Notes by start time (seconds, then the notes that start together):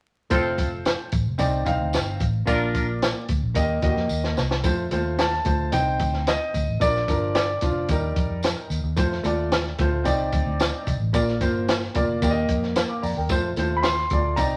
0.30 F1 A3 C4 F4 A4 C5, kick, closed hi-hat, tambourine
0.58 kick, closed hi-hat, tambourine
0.85 snare, closed hi-hat, tambourine
1.12 A1, kick, closed hi-hat, tambourine
1.26 F1
1.38 C2 C4 D#4 D5, kick, closed hi-hat, tambourine
1.65 C2 C4 D#4 F5, kick, closed hi-hat, tambourine
1.80 D2
1.93 G1, snare, closed hi-hat, tambourine
2.20 A1, kick, closed hi-hat, tambourine
2.45 A#1 A#3 D4 F4 A#4 D5, kick, closed hi-hat, tambourine
2.75 kick, closed hi-hat, tambourine
3.02 snare, closed hi-hat, tambourine
3.28 D2, kick, closed hi-hat, tambourine
3.42 A#1
3.54 D#2 A#3 G4 D#5, kick, closed hi-hat, tambourine
3.82 D#2 A#3 F#4 D#5, kick, closed hi-hat, tambourine
3.89 G4
3.96 F2, snare
4.09 D#2, tambourine
4.24 snare
4.37 C2, snare, tambourine
4.51 snare
4.64 F2 A3 F4 C5, kick, closed hi-hat, tambourine
4.91 D#2 A3 F4 C5, closed hi-hat, tambourine
5.18 A5, snare, closed hi-hat, tambourine
5.33 snare
5.45 D2 A3 F4 C5, kick, closed hi-hat, tambourine
5.72 C2 C4 D#4 C5 G5, kick, closed hi-hat, tambourine
5.99 D2, kick, closed hi-hat, tambourine
6.13 snare
6.27 D#5, snare, closed hi-hat, tambourine
6.54 D2, kick, closed hi-hat, tambourine
6.68 A1
6.80 A#1 F3 D4 A#4 D5, kick, closed hi-hat, tambourine
6.96 snare
7.08 G1 F3 D4 A#4, kick, closed hi-hat, tambourine
7.35 D5, snare, closed hi-hat, tambourine
7.61 F1 F3 D4 F4, kick, closed hi-hat, tambourine
7.88 D#2 G3 D#4 A#4, kick, closed hi-hat, tambourine
8.16 F2, kick, closed hi-hat, tambourine
8.30 F2
8.43 snare, closed hi-hat, tambourine
8.70 D#2, closed hi-hat, tambourine
8.83 D#2
8.96 F2 A3 F4 C5, kick, closed hi-hat, tambourine
9.12 snare
9.23 D#2 A3 F4 D5, closed hi-hat, tambourine
9.52 snare, closed hi-hat, tambourine
9.66 snare
9.78 D2 A3 F4 C5, kick, closed hi-hat, tambourine
10.04 C2 C4 D#4 D5, kick, closed hi-hat, tambourine
10.32 D2, kick, closed hi-hat, tambourine
10.46 D2
10.60 snare, closed hi-hat, tambourine
10.87 C2, kick, closed hi-hat, tambourine
11.00 A1
11.13 A#1 A#3 F4 D5, kick, closed hi-hat, tambourine
11.28 snare
11.40 G1 A#3 F4 C5, kick, closed hi-hat, tambourine
11.68 snare, closed hi-hat, tambourine
11.83 snare
11.94 F1 A#3 F4 D5, kick, closed hi-hat, tambourine
12.22 D#2 A#3 G4 D5, kick, closed hi-hat, tambourine
12.30 D#5
12.48 F2, kick, closed hi-hat, tambourine
12.63 snare
12.76 snare, closed hi-hat, tambourine
12.89 F5 D6
13.02 F2 D5 A#5, open hi-hat, tambourine
13.16 D#2 A#4 G5
13.29 F2 A3 F4 C5, kick, closed hi-hat, tambourine
13.56 D#2 A3 F4 C5, closed hi-hat, tambourine
13.77 B5
13.83 C6, snare, closed hi-hat, tambourine
13.98 snare
14.10 D2 A3 F4 D5, kick, closed hi-hat, tambourine
14.36 C2 C4 D#4 D5 A#5, kick, closed hi-hat, tambourine